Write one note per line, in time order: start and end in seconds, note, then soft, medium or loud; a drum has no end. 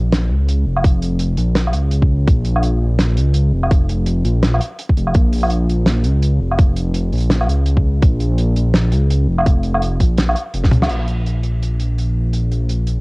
0.00 0.32 A#1 medium
0.12 snare loud
0.12 closed hi-hat medium
0.30 0.65 C#2 loud
0.48 closed hi-hat medium
0.66 1.37 F1 medium
0.76 low woodblock medium
0.84 kick loud
0.84 closed hi-hat medium
1.02 closed hi-hat medium
1.19 closed hi-hat medium
1.37 1.73 A#1 medium
1.37 closed hi-hat medium
1.55 snare loud
1.55 closed hi-hat medium
1.67 low woodblock medium
1.73 2.27 C#2 medium
1.73 closed hi-hat medium
1.91 closed hi-hat medium
2.02 kick medium
2.28 2.80 A#1 loud
2.28 kick loud
2.28 closed hi-hat medium
2.45 closed hi-hat medium
2.56 low woodblock medium
2.63 closed hi-hat medium
2.81 3.19 A#1 medium
2.99 snare loud
2.99 closed hi-hat medium
3.17 3.52 C#2 loud
3.17 closed hi-hat medium
3.34 closed hi-hat medium
3.53 4.24 F1 medium
3.63 low woodblock medium
3.71 kick loud
3.71 closed hi-hat medium
3.89 closed hi-hat medium
4.06 closed hi-hat medium
4.25 4.60 A#1 medium
4.25 closed hi-hat medium
4.43 snare loud
4.43 closed hi-hat medium
4.54 low woodblock medium
4.61 closed hi-hat medium
4.79 closed hi-hat medium
4.89 kick medium
4.97 5.14 F1 medium
4.97 closed hi-hat medium
5.07 low woodblock medium
5.14 5.68 A#1 medium
5.14 kick loud
5.14 closed hi-hat medium
5.33 closed hi-hat medium
5.35 closed hi-hat medium
5.38 closed hi-hat soft
5.40 closed hi-hat soft
5.43 closed hi-hat soft
5.43 low woodblock medium
5.45 closed hi-hat soft
5.47 closed hi-hat soft
5.48 closed hi-hat soft
5.48 closed hi-hat medium
5.69 6.06 A#1 medium
5.69 closed hi-hat medium
5.86 snare loud
5.86 closed hi-hat medium
6.04 6.40 C#2 loud
6.04 closed hi-hat medium
6.22 closed hi-hat medium
6.41 7.12 F1 medium
6.51 low woodblock medium
6.59 kick loud
6.59 closed hi-hat medium
6.76 closed hi-hat medium
6.94 closed hi-hat medium
7.12 7.48 A#1 medium
7.12 closed hi-hat soft
7.15 closed hi-hat soft
7.18 closed hi-hat soft
7.20 closed hi-hat medium
7.30 snare loud
7.30 closed hi-hat medium
7.41 low woodblock medium
7.49 8.01 C#2 medium
7.49 closed hi-hat medium
7.66 closed hi-hat medium
7.77 kick medium
8.02 8.55 A#1 loud
8.02 kick loud
8.02 closed hi-hat medium
8.20 closed hi-hat medium
8.38 closed hi-hat medium
8.56 8.94 A#1 medium
8.56 closed hi-hat medium
8.74 snare loud
8.74 closed hi-hat medium
8.92 9.27 C#2 loud
8.92 closed hi-hat medium
9.10 closed hi-hat medium
9.28 9.99 F1 medium
9.38 low woodblock medium
9.40 low woodblock soft
9.42 low woodblock soft
9.46 kick loud
9.46 closed hi-hat medium
9.46 low woodblock soft
9.54 low woodblock soft
9.63 closed hi-hat medium
9.74 low woodblock medium
9.82 closed hi-hat medium
10.00 10.35 A#1 medium
10.00 kick medium
10.00 closed hi-hat medium
10.17 snare loud
10.17 closed hi-hat medium
10.29 low woodblock medium
10.35 closed hi-hat medium
10.35 low woodblock soft
10.54 10.71 F1 medium
10.54 closed hi-hat medium
10.64 kick medium
10.64 snare soft
10.72 10.89 C#2 medium
10.72 closed hi-hat medium
10.72 mid tom medium
10.82 snare medium
10.82 low woodblock medium
10.89 13.01 A#1 medium
10.89 closed hi-hat medium
10.89 crash medium
11.08 closed hi-hat medium
11.26 closed hi-hat medium
11.43 closed hi-hat medium
11.62 closed hi-hat medium
11.80 closed hi-hat medium
11.98 closed hi-hat medium
12.33 closed hi-hat medium
12.52 closed hi-hat medium
12.69 closed hi-hat medium
12.87 closed hi-hat medium